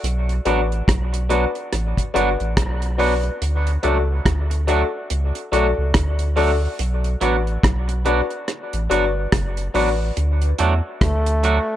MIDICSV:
0, 0, Header, 1, 7, 480
1, 0, Start_track
1, 0, Key_signature, 2, "major"
1, 0, Tempo, 845070
1, 18, Time_signature, 4, 2, 24, 8
1, 6682, End_track
2, 0, Start_track
2, 0, Title_t, "Upright piano"
2, 0, Program_c, 0, 0
2, 257, Note_on_c, 0, 62, 84
2, 259, Note_on_c, 0, 66, 79
2, 262, Note_on_c, 0, 71, 78
2, 265, Note_on_c, 0, 74, 101
2, 350, Note_off_c, 0, 62, 0
2, 350, Note_off_c, 0, 66, 0
2, 352, Note_off_c, 0, 71, 0
2, 353, Note_off_c, 0, 74, 0
2, 735, Note_on_c, 0, 62, 88
2, 736, Note_on_c, 0, 66, 83
2, 739, Note_on_c, 0, 71, 79
2, 742, Note_on_c, 0, 74, 97
2, 828, Note_off_c, 0, 62, 0
2, 829, Note_off_c, 0, 66, 0
2, 830, Note_off_c, 0, 71, 0
2, 832, Note_off_c, 0, 74, 0
2, 1215, Note_on_c, 0, 62, 104
2, 1218, Note_on_c, 0, 66, 88
2, 1220, Note_on_c, 0, 71, 86
2, 1222, Note_on_c, 0, 74, 101
2, 1308, Note_off_c, 0, 62, 0
2, 1309, Note_off_c, 0, 66, 0
2, 1310, Note_off_c, 0, 71, 0
2, 1312, Note_off_c, 0, 74, 0
2, 1360, Note_on_c, 0, 71, 23
2, 1360, Note_on_c, 0, 74, 24
2, 1398, Note_off_c, 0, 74, 0
2, 1399, Note_off_c, 0, 71, 0
2, 1694, Note_on_c, 0, 62, 94
2, 1696, Note_on_c, 0, 66, 76
2, 1698, Note_on_c, 0, 71, 91
2, 1700, Note_on_c, 0, 74, 100
2, 1787, Note_off_c, 0, 62, 0
2, 1788, Note_off_c, 0, 66, 0
2, 1790, Note_off_c, 0, 71, 0
2, 1791, Note_off_c, 0, 74, 0
2, 1842, Note_on_c, 0, 71, 22
2, 1842, Note_on_c, 0, 74, 26
2, 1880, Note_off_c, 0, 71, 0
2, 1880, Note_off_c, 0, 74, 0
2, 2174, Note_on_c, 0, 62, 83
2, 2178, Note_on_c, 0, 66, 77
2, 2179, Note_on_c, 0, 69, 76
2, 2180, Note_on_c, 0, 74, 95
2, 2268, Note_off_c, 0, 62, 0
2, 2269, Note_off_c, 0, 66, 0
2, 2270, Note_off_c, 0, 69, 0
2, 2271, Note_off_c, 0, 74, 0
2, 2655, Note_on_c, 0, 62, 93
2, 2656, Note_on_c, 0, 66, 81
2, 2659, Note_on_c, 0, 69, 82
2, 2663, Note_on_c, 0, 74, 100
2, 2748, Note_off_c, 0, 62, 0
2, 2749, Note_off_c, 0, 66, 0
2, 2750, Note_off_c, 0, 69, 0
2, 2752, Note_off_c, 0, 74, 0
2, 3135, Note_on_c, 0, 62, 98
2, 3139, Note_on_c, 0, 66, 82
2, 3139, Note_on_c, 0, 69, 86
2, 3144, Note_on_c, 0, 74, 99
2, 3228, Note_off_c, 0, 62, 0
2, 3230, Note_off_c, 0, 66, 0
2, 3230, Note_off_c, 0, 69, 0
2, 3232, Note_off_c, 0, 74, 0
2, 3280, Note_on_c, 0, 69, 25
2, 3280, Note_on_c, 0, 74, 25
2, 3318, Note_off_c, 0, 69, 0
2, 3318, Note_off_c, 0, 74, 0
2, 3614, Note_on_c, 0, 62, 90
2, 3617, Note_on_c, 0, 66, 78
2, 3619, Note_on_c, 0, 69, 85
2, 3621, Note_on_c, 0, 74, 103
2, 3707, Note_off_c, 0, 62, 0
2, 3709, Note_off_c, 0, 66, 0
2, 3710, Note_off_c, 0, 69, 0
2, 3711, Note_off_c, 0, 74, 0
2, 3762, Note_on_c, 0, 69, 21
2, 3762, Note_on_c, 0, 74, 23
2, 3799, Note_off_c, 0, 69, 0
2, 3799, Note_off_c, 0, 74, 0
2, 4095, Note_on_c, 0, 62, 79
2, 4098, Note_on_c, 0, 66, 74
2, 4101, Note_on_c, 0, 71, 79
2, 4102, Note_on_c, 0, 74, 90
2, 4188, Note_off_c, 0, 62, 0
2, 4189, Note_off_c, 0, 66, 0
2, 4190, Note_off_c, 0, 71, 0
2, 4191, Note_off_c, 0, 74, 0
2, 4575, Note_on_c, 0, 62, 93
2, 4578, Note_on_c, 0, 66, 80
2, 4580, Note_on_c, 0, 71, 77
2, 4582, Note_on_c, 0, 74, 96
2, 4668, Note_off_c, 0, 62, 0
2, 4669, Note_off_c, 0, 66, 0
2, 4670, Note_off_c, 0, 71, 0
2, 4671, Note_off_c, 0, 74, 0
2, 5053, Note_on_c, 0, 62, 96
2, 5056, Note_on_c, 0, 66, 81
2, 5058, Note_on_c, 0, 71, 87
2, 5061, Note_on_c, 0, 74, 107
2, 5147, Note_off_c, 0, 62, 0
2, 5148, Note_off_c, 0, 66, 0
2, 5149, Note_off_c, 0, 71, 0
2, 5151, Note_off_c, 0, 74, 0
2, 5197, Note_on_c, 0, 74, 24
2, 5198, Note_on_c, 0, 71, 20
2, 5237, Note_off_c, 0, 71, 0
2, 5237, Note_off_c, 0, 74, 0
2, 5534, Note_on_c, 0, 62, 85
2, 5537, Note_on_c, 0, 66, 79
2, 5539, Note_on_c, 0, 71, 86
2, 5541, Note_on_c, 0, 74, 100
2, 5627, Note_off_c, 0, 62, 0
2, 5629, Note_off_c, 0, 66, 0
2, 5630, Note_off_c, 0, 71, 0
2, 5631, Note_off_c, 0, 74, 0
2, 5682, Note_on_c, 0, 74, 24
2, 5683, Note_on_c, 0, 71, 22
2, 5719, Note_off_c, 0, 74, 0
2, 5720, Note_off_c, 0, 71, 0
2, 6682, End_track
3, 0, Start_track
3, 0, Title_t, "Clean electric guitar"
3, 0, Program_c, 1, 27
3, 260, Note_on_c, 1, 54, 67
3, 263, Note_on_c, 1, 59, 76
3, 265, Note_on_c, 1, 62, 81
3, 266, Note_on_c, 1, 66, 85
3, 338, Note_off_c, 1, 54, 0
3, 340, Note_off_c, 1, 59, 0
3, 340, Note_off_c, 1, 62, 0
3, 341, Note_off_c, 1, 66, 0
3, 736, Note_on_c, 1, 54, 81
3, 739, Note_on_c, 1, 59, 82
3, 741, Note_on_c, 1, 62, 81
3, 744, Note_on_c, 1, 66, 79
3, 816, Note_off_c, 1, 54, 0
3, 817, Note_off_c, 1, 59, 0
3, 818, Note_off_c, 1, 62, 0
3, 820, Note_off_c, 1, 66, 0
3, 1217, Note_on_c, 1, 54, 83
3, 1221, Note_on_c, 1, 59, 83
3, 1223, Note_on_c, 1, 62, 79
3, 1224, Note_on_c, 1, 66, 79
3, 1296, Note_off_c, 1, 54, 0
3, 1298, Note_off_c, 1, 59, 0
3, 1299, Note_off_c, 1, 62, 0
3, 1300, Note_off_c, 1, 66, 0
3, 1696, Note_on_c, 1, 54, 91
3, 1700, Note_on_c, 1, 59, 95
3, 1702, Note_on_c, 1, 62, 89
3, 1704, Note_on_c, 1, 66, 97
3, 1775, Note_off_c, 1, 54, 0
3, 1777, Note_off_c, 1, 59, 0
3, 1778, Note_off_c, 1, 62, 0
3, 1779, Note_off_c, 1, 66, 0
3, 2175, Note_on_c, 1, 54, 69
3, 2178, Note_on_c, 1, 57, 81
3, 2181, Note_on_c, 1, 62, 84
3, 2183, Note_on_c, 1, 66, 75
3, 2255, Note_off_c, 1, 54, 0
3, 2256, Note_off_c, 1, 57, 0
3, 2258, Note_off_c, 1, 62, 0
3, 2259, Note_off_c, 1, 66, 0
3, 2655, Note_on_c, 1, 54, 76
3, 2660, Note_on_c, 1, 57, 72
3, 2662, Note_on_c, 1, 62, 83
3, 2665, Note_on_c, 1, 66, 78
3, 2735, Note_off_c, 1, 54, 0
3, 2737, Note_off_c, 1, 57, 0
3, 2738, Note_off_c, 1, 62, 0
3, 2740, Note_off_c, 1, 66, 0
3, 3136, Note_on_c, 1, 54, 72
3, 3139, Note_on_c, 1, 57, 70
3, 3141, Note_on_c, 1, 62, 76
3, 3144, Note_on_c, 1, 66, 86
3, 3215, Note_off_c, 1, 54, 0
3, 3217, Note_off_c, 1, 57, 0
3, 3218, Note_off_c, 1, 62, 0
3, 3219, Note_off_c, 1, 66, 0
3, 3613, Note_on_c, 1, 54, 84
3, 3616, Note_on_c, 1, 57, 78
3, 3618, Note_on_c, 1, 62, 81
3, 3619, Note_on_c, 1, 66, 88
3, 3693, Note_off_c, 1, 54, 0
3, 3695, Note_off_c, 1, 57, 0
3, 3696, Note_off_c, 1, 62, 0
3, 3697, Note_off_c, 1, 66, 0
3, 4095, Note_on_c, 1, 54, 77
3, 4099, Note_on_c, 1, 59, 76
3, 4101, Note_on_c, 1, 62, 70
3, 4103, Note_on_c, 1, 66, 87
3, 4175, Note_off_c, 1, 54, 0
3, 4176, Note_off_c, 1, 59, 0
3, 4178, Note_off_c, 1, 62, 0
3, 4179, Note_off_c, 1, 66, 0
3, 4572, Note_on_c, 1, 54, 68
3, 4576, Note_on_c, 1, 59, 79
3, 4578, Note_on_c, 1, 62, 87
3, 4580, Note_on_c, 1, 66, 87
3, 4653, Note_off_c, 1, 54, 0
3, 4655, Note_off_c, 1, 59, 0
3, 4656, Note_off_c, 1, 62, 0
3, 4657, Note_off_c, 1, 66, 0
3, 5055, Note_on_c, 1, 54, 74
3, 5057, Note_on_c, 1, 59, 67
3, 5060, Note_on_c, 1, 62, 75
3, 5062, Note_on_c, 1, 66, 87
3, 5134, Note_off_c, 1, 54, 0
3, 5135, Note_off_c, 1, 59, 0
3, 5137, Note_off_c, 1, 62, 0
3, 5138, Note_off_c, 1, 66, 0
3, 5534, Note_on_c, 1, 54, 72
3, 5537, Note_on_c, 1, 59, 79
3, 5539, Note_on_c, 1, 62, 80
3, 5542, Note_on_c, 1, 66, 77
3, 5614, Note_off_c, 1, 54, 0
3, 5615, Note_off_c, 1, 59, 0
3, 5617, Note_off_c, 1, 62, 0
3, 5618, Note_off_c, 1, 66, 0
3, 6014, Note_on_c, 1, 54, 77
3, 6016, Note_on_c, 1, 57, 81
3, 6020, Note_on_c, 1, 62, 88
3, 6022, Note_on_c, 1, 66, 80
3, 6094, Note_off_c, 1, 54, 0
3, 6095, Note_off_c, 1, 57, 0
3, 6097, Note_off_c, 1, 62, 0
3, 6098, Note_off_c, 1, 66, 0
3, 6494, Note_on_c, 1, 54, 81
3, 6497, Note_on_c, 1, 57, 70
3, 6500, Note_on_c, 1, 62, 81
3, 6502, Note_on_c, 1, 66, 89
3, 6574, Note_off_c, 1, 54, 0
3, 6575, Note_off_c, 1, 57, 0
3, 6577, Note_off_c, 1, 62, 0
3, 6578, Note_off_c, 1, 66, 0
3, 6682, End_track
4, 0, Start_track
4, 0, Title_t, "Trombone"
4, 0, Program_c, 2, 57
4, 6263, Note_on_c, 2, 57, 86
4, 6682, Note_off_c, 2, 57, 0
4, 6682, End_track
5, 0, Start_track
5, 0, Title_t, "Sub bass"
5, 0, Program_c, 3, 38
5, 21, Note_on_c, 3, 35, 113
5, 227, Note_off_c, 3, 35, 0
5, 261, Note_on_c, 3, 33, 95
5, 467, Note_off_c, 3, 33, 0
5, 501, Note_on_c, 3, 35, 89
5, 830, Note_off_c, 3, 35, 0
5, 984, Note_on_c, 3, 33, 107
5, 1104, Note_off_c, 3, 33, 0
5, 1225, Note_on_c, 3, 31, 91
5, 1344, Note_off_c, 3, 31, 0
5, 1367, Note_on_c, 3, 33, 78
5, 1448, Note_off_c, 3, 33, 0
5, 1461, Note_on_c, 3, 35, 85
5, 1874, Note_off_c, 3, 35, 0
5, 1942, Note_on_c, 3, 38, 103
5, 2147, Note_off_c, 3, 38, 0
5, 2184, Note_on_c, 3, 37, 86
5, 2388, Note_off_c, 3, 37, 0
5, 2420, Note_on_c, 3, 38, 82
5, 2749, Note_off_c, 3, 38, 0
5, 2902, Note_on_c, 3, 37, 97
5, 3023, Note_off_c, 3, 37, 0
5, 3138, Note_on_c, 3, 35, 86
5, 3261, Note_off_c, 3, 35, 0
5, 3285, Note_on_c, 3, 37, 82
5, 3367, Note_off_c, 3, 37, 0
5, 3379, Note_on_c, 3, 38, 93
5, 3793, Note_off_c, 3, 38, 0
5, 3861, Note_on_c, 3, 35, 106
5, 4066, Note_off_c, 3, 35, 0
5, 4099, Note_on_c, 3, 33, 91
5, 4305, Note_off_c, 3, 33, 0
5, 4338, Note_on_c, 3, 35, 83
5, 4668, Note_off_c, 3, 35, 0
5, 4963, Note_on_c, 3, 33, 98
5, 5045, Note_off_c, 3, 33, 0
5, 5060, Note_on_c, 3, 31, 80
5, 5266, Note_off_c, 3, 31, 0
5, 5299, Note_on_c, 3, 30, 101
5, 5505, Note_off_c, 3, 30, 0
5, 5537, Note_on_c, 3, 33, 90
5, 5744, Note_off_c, 3, 33, 0
5, 5779, Note_on_c, 3, 38, 115
5, 5985, Note_off_c, 3, 38, 0
5, 6020, Note_on_c, 3, 40, 81
5, 6141, Note_off_c, 3, 40, 0
5, 6256, Note_on_c, 3, 38, 93
5, 6586, Note_off_c, 3, 38, 0
5, 6682, End_track
6, 0, Start_track
6, 0, Title_t, "Muted clean electric guitar strokes"
6, 640, Note_on_c, 9, 29, 47
6, 697, Note_off_c, 9, 29, 0
6, 2558, Note_on_c, 9, 29, 44
6, 2615, Note_off_c, 9, 29, 0
6, 4476, Note_on_c, 9, 29, 52
6, 4533, Note_off_c, 9, 29, 0
6, 6682, End_track
7, 0, Start_track
7, 0, Title_t, "Drums"
7, 24, Note_on_c, 9, 42, 78
7, 80, Note_off_c, 9, 42, 0
7, 166, Note_on_c, 9, 42, 44
7, 223, Note_off_c, 9, 42, 0
7, 258, Note_on_c, 9, 42, 70
7, 315, Note_off_c, 9, 42, 0
7, 409, Note_on_c, 9, 42, 32
7, 466, Note_off_c, 9, 42, 0
7, 499, Note_on_c, 9, 36, 101
7, 504, Note_on_c, 9, 37, 91
7, 505, Note_on_c, 9, 42, 95
7, 556, Note_off_c, 9, 36, 0
7, 561, Note_off_c, 9, 37, 0
7, 561, Note_off_c, 9, 42, 0
7, 646, Note_on_c, 9, 42, 60
7, 702, Note_off_c, 9, 42, 0
7, 740, Note_on_c, 9, 42, 55
7, 796, Note_off_c, 9, 42, 0
7, 882, Note_on_c, 9, 42, 35
7, 939, Note_off_c, 9, 42, 0
7, 980, Note_on_c, 9, 37, 59
7, 980, Note_on_c, 9, 42, 83
7, 1037, Note_off_c, 9, 37, 0
7, 1037, Note_off_c, 9, 42, 0
7, 1121, Note_on_c, 9, 36, 60
7, 1126, Note_on_c, 9, 42, 60
7, 1178, Note_off_c, 9, 36, 0
7, 1183, Note_off_c, 9, 42, 0
7, 1226, Note_on_c, 9, 42, 64
7, 1283, Note_off_c, 9, 42, 0
7, 1364, Note_on_c, 9, 42, 34
7, 1420, Note_off_c, 9, 42, 0
7, 1460, Note_on_c, 9, 36, 106
7, 1460, Note_on_c, 9, 37, 114
7, 1463, Note_on_c, 9, 42, 118
7, 1516, Note_off_c, 9, 36, 0
7, 1517, Note_off_c, 9, 37, 0
7, 1519, Note_off_c, 9, 42, 0
7, 1602, Note_on_c, 9, 42, 50
7, 1659, Note_off_c, 9, 42, 0
7, 1700, Note_on_c, 9, 46, 71
7, 1757, Note_off_c, 9, 46, 0
7, 1837, Note_on_c, 9, 42, 31
7, 1894, Note_off_c, 9, 42, 0
7, 1941, Note_on_c, 9, 42, 82
7, 1998, Note_off_c, 9, 42, 0
7, 2083, Note_on_c, 9, 42, 47
7, 2140, Note_off_c, 9, 42, 0
7, 2176, Note_on_c, 9, 42, 67
7, 2233, Note_off_c, 9, 42, 0
7, 2417, Note_on_c, 9, 36, 102
7, 2419, Note_on_c, 9, 37, 99
7, 2420, Note_on_c, 9, 42, 87
7, 2474, Note_off_c, 9, 36, 0
7, 2476, Note_off_c, 9, 37, 0
7, 2477, Note_off_c, 9, 42, 0
7, 2562, Note_on_c, 9, 42, 56
7, 2619, Note_off_c, 9, 42, 0
7, 2658, Note_on_c, 9, 42, 57
7, 2715, Note_off_c, 9, 42, 0
7, 2898, Note_on_c, 9, 42, 82
7, 2954, Note_off_c, 9, 42, 0
7, 3040, Note_on_c, 9, 42, 54
7, 3097, Note_off_c, 9, 42, 0
7, 3141, Note_on_c, 9, 42, 75
7, 3198, Note_off_c, 9, 42, 0
7, 3375, Note_on_c, 9, 37, 108
7, 3377, Note_on_c, 9, 36, 106
7, 3378, Note_on_c, 9, 42, 116
7, 3431, Note_off_c, 9, 37, 0
7, 3434, Note_off_c, 9, 36, 0
7, 3434, Note_off_c, 9, 42, 0
7, 3516, Note_on_c, 9, 42, 51
7, 3572, Note_off_c, 9, 42, 0
7, 3616, Note_on_c, 9, 46, 72
7, 3673, Note_off_c, 9, 46, 0
7, 3857, Note_on_c, 9, 42, 81
7, 3914, Note_off_c, 9, 42, 0
7, 4001, Note_on_c, 9, 42, 43
7, 4057, Note_off_c, 9, 42, 0
7, 4096, Note_on_c, 9, 42, 71
7, 4153, Note_off_c, 9, 42, 0
7, 4244, Note_on_c, 9, 42, 29
7, 4301, Note_off_c, 9, 42, 0
7, 4336, Note_on_c, 9, 36, 106
7, 4341, Note_on_c, 9, 37, 99
7, 4341, Note_on_c, 9, 42, 90
7, 4393, Note_off_c, 9, 36, 0
7, 4398, Note_off_c, 9, 37, 0
7, 4398, Note_off_c, 9, 42, 0
7, 4480, Note_on_c, 9, 42, 62
7, 4537, Note_off_c, 9, 42, 0
7, 4576, Note_on_c, 9, 42, 57
7, 4632, Note_off_c, 9, 42, 0
7, 4717, Note_on_c, 9, 42, 34
7, 4774, Note_off_c, 9, 42, 0
7, 4816, Note_on_c, 9, 37, 63
7, 4816, Note_on_c, 9, 42, 77
7, 4873, Note_off_c, 9, 37, 0
7, 4873, Note_off_c, 9, 42, 0
7, 4960, Note_on_c, 9, 42, 58
7, 5017, Note_off_c, 9, 42, 0
7, 5061, Note_on_c, 9, 42, 69
7, 5118, Note_off_c, 9, 42, 0
7, 5296, Note_on_c, 9, 37, 116
7, 5297, Note_on_c, 9, 36, 110
7, 5299, Note_on_c, 9, 42, 99
7, 5353, Note_off_c, 9, 37, 0
7, 5354, Note_off_c, 9, 36, 0
7, 5356, Note_off_c, 9, 42, 0
7, 5437, Note_on_c, 9, 42, 49
7, 5494, Note_off_c, 9, 42, 0
7, 5536, Note_on_c, 9, 46, 66
7, 5593, Note_off_c, 9, 46, 0
7, 5776, Note_on_c, 9, 42, 88
7, 5833, Note_off_c, 9, 42, 0
7, 5916, Note_on_c, 9, 42, 45
7, 5973, Note_off_c, 9, 42, 0
7, 6012, Note_on_c, 9, 42, 81
7, 6069, Note_off_c, 9, 42, 0
7, 6255, Note_on_c, 9, 36, 119
7, 6257, Note_on_c, 9, 37, 113
7, 6257, Note_on_c, 9, 42, 88
7, 6312, Note_off_c, 9, 36, 0
7, 6313, Note_off_c, 9, 37, 0
7, 6314, Note_off_c, 9, 42, 0
7, 6398, Note_on_c, 9, 42, 65
7, 6455, Note_off_c, 9, 42, 0
7, 6496, Note_on_c, 9, 42, 68
7, 6552, Note_off_c, 9, 42, 0
7, 6682, End_track
0, 0, End_of_file